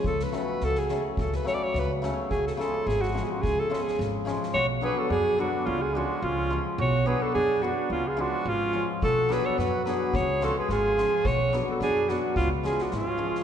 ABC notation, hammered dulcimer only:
X:1
M:2/4
L:1/8
Q:"Swing 16ths" 1/4=107
K:none
V:1 name="Hammered dulcimer"
z [^C,^F,A,^C] z [C,F,A,C] | z [^C,^F,A,^C] z [C,F,A,C] | z [^C,^E,^G,^C] z [C,E,G,C] | z [^C,^E,^G,^C] z [C,E,G,C] |
z [D,^F,B,D] z [D,F,B,D] | z [^E,^G,^C^E] z [E,G,CE] | z [^F,B,D^F] z [F,B,DF] | z [^E,^G,^C^E] z [E,G,CE] |
z [^F,B,D^F] z [F,B,DF] | z [^E,^G,^C^E] z [E,G,CE] | z [^F,B,D^F] z [F,B,DF] | z [^E,^G,^C^E] z [E,G,CE] |]